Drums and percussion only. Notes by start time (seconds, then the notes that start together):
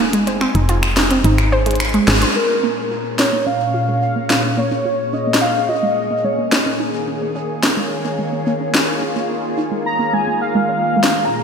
0.13 closed hi-hat
0.27 closed hi-hat
0.41 finger snap
0.55 closed hi-hat
0.69 closed hi-hat
0.83 finger snap, closed hi-hat
0.97 snare
1.11 closed hi-hat
1.24 closed hi-hat
1.38 finger snap, closed hi-hat
1.66 closed hi-hat
1.71 closed hi-hat
1.76 closed hi-hat
1.80 finger snap, closed hi-hat
1.85 closed hi-hat
1.89 closed hi-hat
1.94 closed hi-hat
2.08 snare
2.22 closed hi-hat
3.19 snare
4.30 snare
5.34 snare
6.52 snare
7.63 snare
8.74 snare
11.04 snare